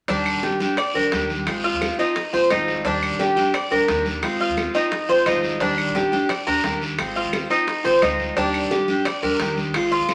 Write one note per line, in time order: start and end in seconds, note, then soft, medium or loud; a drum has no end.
0.08 0.33 D#2 medium
0.08 0.59 D#3 medium
0.08 0.60 G3 medium
0.08 0.42 D4 medium
0.08 0.60 D4 medium
0.08 0.59 G4 medium
0.08 high bongo medium
0.08 high conga soft
0.08 long guiro medium
0.26 high conga soft
0.26 claves medium
0.34 0.51 A#1 medium
0.43 0.77 G4 medium
0.43 high bongo medium
0.43 high conga medium
0.43 short guiro medium
0.60 0.77 G3 medium
0.60 0.77 D4 medium
0.60 0.77 G4 medium
0.60 high conga medium
0.60 short guiro medium
0.77 0.95 D5 medium
0.77 muted steel-string acoustic guitar stroke medium
0.77 high bongo medium
0.77 high conga soft
0.77 long guiro medium
0.77 claves medium
0.94 1.11 D#2 medium
0.94 1.11 G3 medium
0.94 1.12 D4 medium
0.94 1.11 G4 medium
0.94 1.28 A#4 medium
0.94 high conga soft
1.12 1.45 D#2 medium
1.12 1.46 D#3 soft
1.12 1.46 G3 medium
1.12 1.46 D4 medium
1.12 1.47 G4 soft
1.12 high bongo medium
1.12 low bongo medium
1.12 high conga medium
1.12 short guiro medium
1.30 high conga medium
1.30 short guiro medium
1.47 1.71 G#1 medium
1.47 1.98 G#3 medium
1.47 1.98 C4 medium
1.47 1.98 F4 medium
1.47 high bongo medium
1.47 long guiro medium
1.47 claves medium
1.64 1.98 F4 medium
1.64 high bongo soft
1.64 high conga soft
1.73 1.89 D#2 medium
1.82 high bongo medium
1.82 high conga medium
1.82 short guiro medium
1.82 claves medium
1.99 2.15 C4 soft
1.99 2.32 D#4 medium
1.99 2.15 F4 medium
1.99 high conga soft
1.99 short guiro medium
2.16 muted steel-string acoustic guitar stroke medium
2.16 high bongo medium
2.16 high conga soft
2.16 long guiro medium
2.33 2.50 G#1 medium
2.33 2.49 C4 soft
2.33 2.50 F4 medium
2.33 2.50 C5 medium
2.33 high bongo soft
2.33 high conga soft
2.50 2.83 G#1 medium
2.50 2.84 G#3 soft
2.50 2.84 C4 soft
2.50 2.84 D#4 medium
2.50 2.85 F4 medium
2.50 high bongo medium
2.50 low bongo medium
2.50 high conga medium
2.50 short guiro medium
2.50 claves medium
2.68 high bongo soft
2.68 high conga medium
2.68 short guiro medium
2.85 3.10 D#2 medium
2.85 3.36 D#3 medium
2.85 3.36 G3 medium
2.85 3.18 D4 medium
2.85 3.36 D4 medium
2.85 3.35 G4 medium
2.85 high bongo medium
2.85 long guiro medium
3.03 high conga soft
3.03 claves medium
3.11 3.27 A#1 medium
3.19 3.53 G4 medium
3.19 high bongo medium
3.19 high conga medium
3.19 short guiro medium
3.36 3.53 G3 medium
3.36 3.53 D4 medium
3.36 3.53 G4 medium
3.36 high conga medium
3.36 short guiro medium
3.54 3.71 D5 medium
3.54 muted steel-string acoustic guitar stroke medium
3.54 high bongo medium
3.54 high conga soft
3.54 long guiro medium
3.54 claves medium
3.71 3.87 D#2 medium
3.71 3.87 G3 medium
3.71 3.87 D4 medium
3.71 3.87 G4 medium
3.71 4.05 A#4 medium
3.71 high conga soft
3.88 4.21 D#2 medium
3.88 4.22 D#3 soft
3.88 4.22 G3 soft
3.88 4.22 D4 soft
3.88 4.22 G4 medium
3.88 high bongo medium
3.88 low bongo medium
3.88 high conga medium
3.88 short guiro medium
4.05 high conga medium
4.05 short guiro medium
4.22 4.47 G#1 medium
4.22 4.74 G#3 medium
4.22 4.74 C4 medium
4.22 4.74 F4 medium
4.22 high bongo medium
4.22 high conga soft
4.22 long guiro medium
4.22 claves medium
4.40 4.74 F4 medium
4.40 high bongo soft
4.40 high conga soft
4.49 4.65 D#2 medium
4.57 high bongo medium
4.57 high conga medium
4.57 short guiro medium
4.57 claves medium
4.74 4.90 C4 medium
4.74 5.08 D#4 medium
4.74 4.91 F4 medium
4.74 high conga soft
4.74 short guiro medium
4.91 muted steel-string acoustic guitar stroke medium
4.91 high bongo medium
4.91 high conga soft
4.91 long guiro medium
5.09 5.25 G#1 medium
5.09 5.25 C4 medium
5.09 5.25 F4 medium
5.09 5.26 C5 medium
5.09 high bongo soft
5.09 high conga soft
5.26 5.59 G#1 medium
5.26 5.60 G#3 soft
5.26 5.60 C4 medium
5.26 5.60 D#4 medium
5.26 5.60 F4 medium
5.26 high bongo medium
5.26 low bongo medium
5.26 high conga medium
5.26 short guiro medium
5.26 claves medium
5.43 high bongo soft
5.43 high conga medium
5.43 short guiro medium
5.60 5.85 D#2 medium
5.60 6.11 D#3 medium
5.60 6.12 G3 medium
5.60 5.94 D4 medium
5.60 6.11 D4 medium
5.60 6.11 G4 medium
5.60 high bongo medium
5.60 high conga soft
5.60 long guiro medium
5.78 claves medium
5.87 6.03 A#1 medium
5.95 6.29 G4 medium
5.95 high bongo medium
5.95 high conga medium
5.95 short guiro medium
6.12 6.29 G3 soft
6.12 6.29 D4 medium
6.12 6.29 G4 medium
6.12 high conga medium
6.12 short guiro medium
6.29 6.46 D5 medium
6.29 muted steel-string acoustic guitar stroke medium
6.29 high bongo medium
6.29 high conga soft
6.29 long guiro medium
6.29 claves medium
6.47 6.63 D#2 medium
6.47 6.63 G3 soft
6.47 6.64 D4 medium
6.47 6.63 G4 medium
6.47 6.80 A#4 medium
6.47 high conga soft
6.63 6.97 D#2 medium
6.63 6.98 D#3 soft
6.63 6.98 G3 medium
6.63 6.98 D4 medium
6.63 6.98 G4 medium
6.63 high bongo medium
6.63 low bongo medium
6.63 high conga medium
6.63 short guiro medium
6.81 high conga medium
6.81 short guiro medium
6.98 7.23 G#1 medium
6.98 7.50 G#3 medium
6.98 7.50 C4 medium
6.98 7.49 F4 medium
6.98 high bongo medium
6.98 high conga soft
6.98 long guiro medium
6.98 claves medium
7.16 7.49 F4 medium
7.16 high bongo soft
7.16 high conga soft
7.24 7.41 D#2 medium
7.33 high bongo medium
7.33 high conga medium
7.33 short guiro medium
7.33 claves medium
7.50 7.66 C4 soft
7.50 7.84 D#4 medium
7.50 7.67 F4 medium
7.50 high conga soft
7.50 short guiro medium
7.67 muted steel-string acoustic guitar stroke medium
7.67 high bongo medium
7.67 high conga soft
7.67 long guiro medium
7.84 8.01 G#1 medium
7.84 8.01 C4 medium
7.84 8.01 F4 medium
7.84 8.02 C5 medium
7.84 high bongo soft
7.84 high conga soft
8.02 8.35 D2 medium
8.02 8.36 G#3 medium
8.02 8.36 C4 soft
8.02 8.36 D#4 medium
8.02 8.37 F4 medium
8.02 high bongo medium
8.02 low bongo medium
8.02 high conga medium
8.02 short guiro medium
8.02 claves medium
8.19 high bongo soft
8.19 high conga medium
8.19 short guiro medium
8.36 8.61 D#2 medium
8.36 8.87 D#3 medium
8.36 8.88 G3 medium
8.36 8.70 D4 medium
8.36 8.88 D4 medium
8.36 8.87 G4 medium
8.36 high bongo medium
8.36 long guiro medium
8.54 high conga soft
8.54 claves medium
8.62 8.79 A#1 medium
8.71 9.05 G4 medium
8.71 high bongo medium
8.71 high conga medium
8.71 short guiro medium
8.88 9.05 G3 medium
8.88 9.05 D4 medium
8.88 9.05 G4 medium
8.88 high conga medium
8.88 short guiro medium
9.05 9.22 D5 medium
9.05 muted steel-string acoustic guitar stroke medium
9.05 high bongo medium
9.05 high conga soft
9.05 long guiro medium
9.05 claves medium
9.23 9.39 D#2 medium
9.23 9.39 G3 soft
9.23 9.39 D4 medium
9.23 9.39 G4 medium
9.23 9.56 A#4 medium
9.23 high conga soft
9.40 9.73 D#2 loud
9.40 9.74 D#3 medium
9.40 9.74 G3 soft
9.40 9.74 D4 medium
9.40 9.74 G4 medium
9.40 high bongo medium
9.40 low bongo medium
9.40 high conga medium
9.40 short guiro medium
9.57 high conga medium
9.57 short guiro medium
9.74 9.99 G#1 medium
9.74 10.14 G#3 medium
9.74 10.14 C4 medium
9.74 10.14 F4 medium
9.74 high bongo medium
9.74 long guiro medium
9.74 claves medium
9.91 10.14 F4 medium
9.91 high bongo soft
9.91 high conga soft
10.00 10.14 D#2 medium
10.09 high bongo medium
10.09 high conga medium
10.09 short guiro medium
10.09 claves medium